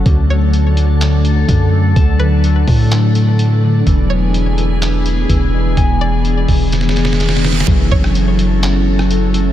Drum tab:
HH |x-----------x-----x-----x-----x-----x-----------|x-----------x-----o-----x-----x-----x-----------|x-----------x-----x-----x-----x-----x-----------|x-----------x-----o-----x-----x-----x-----------|
CP |------------------------x-----------------------|------------------------x-----------------------|------------------------x-----------------------|------------------------------------------------|
SD |------------------------------------------------|------------------------------------------------|------------------------------------------------|------------------------o-o-o-o-o-o-o-o-o-o-o-o-|
BD |o-----------------------------------o-----------|o-----------------o-----------------------------|o-----------------------------------o-----------|o-----------------o-----------------------------|

HH |x-----------x-----x-----x-----------x-----x-----|
CP |------------------------x-----------------------|
SD |---------r-----------------------r--------------|
BD |o-----o-----------------------------------------|